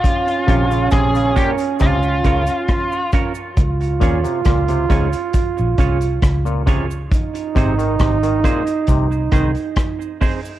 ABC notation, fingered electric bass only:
X:1
M:4/4
L:1/16
Q:1/4=68
K:Bbdor
V:1 name="Fingered electric bass" clef=bass
z2 B,,,2 B,,,2 z2 D,,2 D,, z4 z | D,,2 E,, z D,,2 D,, z2 B,,, C,,2 D,,4 | z2 A,,,2 A,,,2 z2 C,,2 C,, z4 z |]